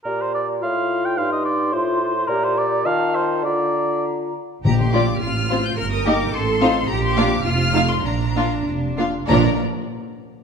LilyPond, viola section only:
\new Staff \with { instrumentName = "Viola section" } { \time 2/4 \key bes \major \tempo 4 = 105 r2 | r2 | r2 | r2 |
r8 <bes f'>16 r8. <c' f'>16 r16 | r8 <bes ees'>16 r8. <c' ees'>16 r16 | r8 <bes d'>16 r8. <a ees'>16 r16 | r8 <bes d'>16 r8. <bes d'>16 r16 |
<f d'>8 r4. | }